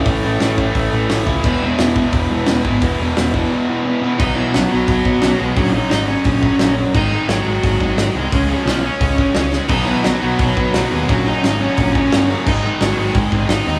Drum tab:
CC |--------|x-------|--------|x-------|
HH |o-o-o-o-|--o-o-o-|o-o-----|--o-o-o-|
SD |--o---o-|--o---o-|--o-----|--o---o-|
BD |o--oo--o|o--oo--o|o--o----|o---oo--|

CC |--------|x-------|--------|x-------|
HH |o-o-o-o-|--o-o-o-|o-o-o-o-|o-o-o-o-|
SD |--o---o-|--o---o-|--o---oo|--o---o-|
BD |o---oo--|o---oo--|o---oo--|o---oo--|

CC |--------|x-------|
HH |o-o-o-o-|--o-o-o-|
SD |--o---o-|--o---o-|
BD |o---oo--|o---oo--|